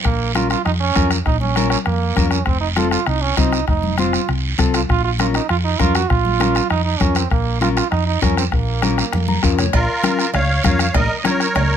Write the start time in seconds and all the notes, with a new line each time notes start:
0.04 A#1 A#3, bombo low, bombo rim, long guiro
0.35 C#4 F4 A#4, bombo rim, high conga, short guiro
0.50 F4, bombo rim, short guiro
0.65 F2 D#4, bombo rim, long guiro
0.80 C#4
0.95 F2 C#4 F4 A#4, bombo low, bombo rim, high conga, short guiro
1.11 bombo rim, short guiro
1.26 A#1 D#4, bombo low, bombo rim, long guiro
1.41 C#4, high conga
1.56 C#4 F4 A#4, bombo rim, high conga, short guiro
1.70 C#4, bombo rim, short guiro
1.86 F2 A#3, bombo rim, long guiro
2.16 F2 C#4 F4 A#4, bombo low, bombo rim, high conga, short guiro
2.31 C#4, bombo rim, short guiro
2.45 F1 C4, bombo low, bombo rim, long guiro
2.61 D#4
2.76 C4 F4 A4, bombo rim, high conga, short guiro
2.91 F4, bombo rim, short guiro
3.06 C2 D#4, bombo rim, long guiro
3.22 C#4
3.37 C2 C4 D#4 F4 C5, bombo low, bombo rim, high conga, short guiro
3.52 bombo rim, short guiro
3.67 F1 D#4, bombo low, bombo rim, long guiro
3.83 high conga
3.98 C4 F4 C5, bombo rim, high conga, short guiro
4.13 bombo rim, short guiro
4.29 C2, bombo rim, long guiro
4.58 C2 C4 F4 A4, bombo low, bombo rim, high conga, short guiro
4.74 F4, bombo rim, short guiro
4.89 A#1 F4, bombo low, bombo rim, long guiro
5.04 F4
5.19 C#4 F4 A#4, bombo rim, high conga, short guiro
5.34 D#4, bombo rim, short guiro
5.49 F2 F4, bombo rim, long guiro
5.64 D#4
5.79 F2 C#4 F4 A#4, bombo low, bombo rim, high conga, short guiro
5.95 F#4, bombo rim, short guiro
6.09 A#1 F4, bombo low, bombo rim, long guiro
6.25 high conga
6.40 C#4 F4 A#4, bombo rim, high conga, short guiro
6.55 bombo rim, short guiro
6.70 F2 D#4, bombo rim, long guiro
6.85 D#4
7.00 F2 C#4 F4 A#4, bombo low, bombo rim, high conga, short guiro
7.15 C4, bombo rim, short guiro
7.30 A#1 A#3, bombo low, bombo rim, long guiro
7.61 C#4 F4 A#4, bombo rim, high conga, short guiro
7.76 F4, bombo rim, short guiro
7.91 F2 D#4, bombo rim, long guiro
8.07 D#4
8.21 F2 C#4 F4 A#4, bombo low, bombo rim, high conga, short guiro
8.37 C4, bombo rim, short guiro
8.52 A#1 A#3, bombo low, bombo rim, long guiro
8.82 C#4 F4 A#4, bombo rim, high conga, short guiro
8.98 bombo rim, short guiro
9.12 F2, bombo rim, high conga, long guiro
9.28 A#5, high conga
9.43 F2 C#4 F4 A#4 F5, bombo low, bombo rim, short guiro
9.58 C#5, bombo rim, low conga, short guiro
9.73 A#1 F4 A#4, bombo low, bombo rim, cowbell, long guiro
10.03 C#4 F4 A#4, bombo rim, cowbell, high conga, short guiro
10.19 bombo rim, short guiro
10.33 C#2 C#5 F5, bombo rim, cowbell, low conga, long guiro
10.64 F2 C#4 F4 A#4 C#5 F5, bombo low, bombo rim, cowbell, high conga, low conga, short guiro
10.79 bombo rim, short guiro
10.94 A#1 A#4 D#5, bombo low, bombo rim, cowbell, low conga, long guiro
11.18 D#5
11.24 C#4 F4 A#4 C#5, bombo rim, cowbell, high conga, short guiro
11.40 bombo rim, short guiro
11.55 C#2, bombo rim, cowbell, low conga, long guiro